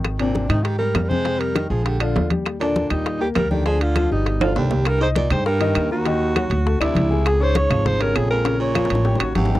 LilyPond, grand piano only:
\new Staff \with { instrumentName = "Grand piano" } { \time 4/4 \key ees \major \tempo 4 = 200 <ees ees'>8 <c c'>4 <ees ees'>4 <g g'>4 <c c'>8 | <c c'>4 <ees ees'>8 <aes aes'>4 <d d'>4 <g g'>8~ | <g g'>8 <d d'>4 <g g'>4 <bes bes'>4 <d d'>8 | <d d'>4 <f f'>8 <g g'>4 <d d'>4 <g g'>8 |
r8 <ees' ees'' ees'''>4 <g g' g''>4 <ees ees' ees''>4 <bes bes' bes''>8 | <ees ees' ees''>4 <ges ges' ges''>4 <a a' a''>8 <d' d'' d'''>4 <aes aes' aes''>8~ | <aes aes' aes''>8 <des' des'' des'''>4 <f f' f''>4 <des des' des''>4 <aes aes' aes''>8 | <des des' des''>4 <f f' f''>4 <g g' g''>8 <cis' cis'' cis'''>4 <g g' g''>8 | }